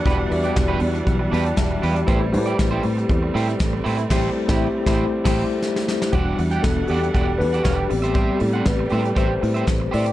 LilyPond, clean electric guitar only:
\new Staff \with { instrumentName = "Clean electric guitar" } { \time 4/4 \key e \minor \tempo 4 = 118 <d' g' b'>16 r8 <d' g' d''>16 r16 <d' g' b'>16 r4 <d' g' b'>16 r8. <d' g' b'>16 r16 | <e' g' c''>16 r8 <e' g' d''>16 r16 <e' g' c''>16 r4 <e' g' c''>16 r8. <e' g' c''>16 r16 | <e' g' c''>8 r16 <e' g'>8 r16 <e' g' c''>8 r16 <e' g' c''>8 r4 r16 | <g' d'' fis''>8 r16 <g' d'' g''>16 r8 <g' d'' fis''>16 r16 <g' d'' fis''>16 r8 <g' d'' fis''>16 <g' d'' fis''>8 r16 <g' c'' e''>16 |
<g' c'' e''>8 r16 <g' c'' fis''>16 r8 <g' c'' e''>16 r16 <g' c'' e''>16 r8 <g' c'' e''>16 r8 <g' c'' e''>16 r16 | }